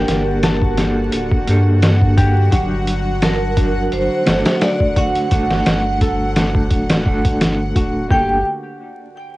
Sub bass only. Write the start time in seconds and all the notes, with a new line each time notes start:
0.08 G1
1.13 D1
1.48 G2
2.52 G1
3.92 G1
4.28 G1
5.32 G1
5.67 G1
6.71 D1
7.06 G1
7.25 G1
7.76 D1
8.11 G1